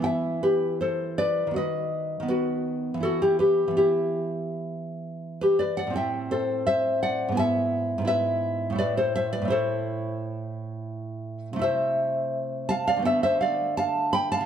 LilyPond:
\new Staff \with { instrumentName = "Nylon-string guitar" } { \time 4/4 \key e \minor \tempo 4 = 83 << { <e'' g''>8 <g' b'>8 <a' c''>8 <b' d''>8 <b' dis''>4 <fis' b'>4 | <fis' a'>16 <e' g'>16 <g' b'>8 <e' g'>2~ <e' g'>16 <g' b'>16 <b' d''>16 <d'' fis''>16 | <e'' g''>8 <a' c''>8 <c'' e''>8 <d'' fis''>8 <e'' gis''>4 <b' e''>4 | <b' d''>16 <a' c''>16 <c'' e''>16 <b' d''>16 <a' c''>2~ <a' c''>8 r8 |
\key a \minor <c'' e''>4. <f'' a''>16 <d'' f''>16 <e'' g''>16 <c'' e''>16 <d'' f''>8 <f'' a''>8 <g'' b''>16 <f'' a''>16 | } \\ { <e b e'>2 <dis b fis'>4 <dis b>4 | <e b e'>4 <e b>2. | <a, c' e'>2 <gis, b e'>4 <gis, b e'>4 | <a, a e'>4 <a, a e'>2. |
<c a e'>2 <d a b>2 | } >> }